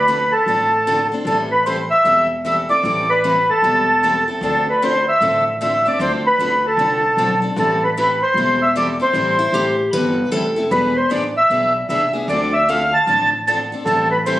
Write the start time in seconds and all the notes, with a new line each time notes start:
Already playing: D2 B4
0.08 D3 F3 C4 D4 A4
0.32 A4
0.46 A1 D3 F3 C4 D4 A4
0.87 D3 F3 C4 D4 A4
1.12 C4 D4 A4
1.25 A1 E3 G3 C4 E4 A4
1.52 B4
1.66 E3 G3 C4 E4 A4 C5
1.91 E5
2.05 E1 E3 G3 C4 E4 A4
2.45 E3 G3 C4 E4 A4 E5
2.69 C4 E4 A4 D5
2.83 A1 E3 G3 C4 E4 A4
3.10 B4
3.24 E3 G3 C4 E4 A4
3.50 A4
3.62 E1 E3 G3 C4 E4 A4
4.03 E3 G3 C4 E4 A4
4.28 C4 E4 A4
4.41 D2 D3 F3 C4 D4 A4
4.69 B4
4.82 D3 F3 C4 D4 A4 C5
5.09 E5
5.21 A1 D3 F3 C4 D4 A4
5.61 D3 F3 C4 D4 A4 E5
5.86 C4 D4 A4 D5
5.99 D2 D3 F3 C4 D4 A4 C5
6.27 B4
6.39 D2 D3 F3 C4 D4 A4
6.67 A4
6.77 C2 D3 F3 C4 D4 A4
7.17 B1 D3 F3 C4 D4 A4
7.42 C4 D4 A4
7.56 A1 E3 G3 C4 E4 A4
7.84 B4
7.97 E3 G3 C4 E4 A4 B4
8.23 C5
8.34 E1 E3 G3 C4 E4 A4
8.62 E5
8.76 E3 G3 C4 E4 A4 D5
9.00 C4 E4 A4 C5
9.13 A1 E3 G3 C4 E4 A4
9.39 E4
9.52 A1 E3 G3 C4 E4 G4 A4
9.93 G1 E3 G3 C4 E4 A4 B4
10.32 F1 E3 G3 C4 E4 A4
10.56 C4 E4 A4
10.71 E1 E3 B3 D4 G#4 B4
10.96 C5
11.10 A1 E3 B3 D4 G#4 D5
11.37 E5
11.50 B1 E3 B3 D4 G#4
11.89 C2 E3 B3 D4 G#4 E5
12.13 B3 D4 G#4
12.28 D2 D3 F3 C4 D4 A4 D5
12.53 E5
12.69 D3 F3 C4 D4 A4 F5
12.93 A5
13.07 A1 D3 F3 C4 D4 A4
13.47 D3 F3 C4 D4 A4 A5
13.72 C4 D4 A4
13.85 A1 E3 G3 C4 E4 A4
14.11 B4
14.26 E3 G3 C4 E4 A4 C5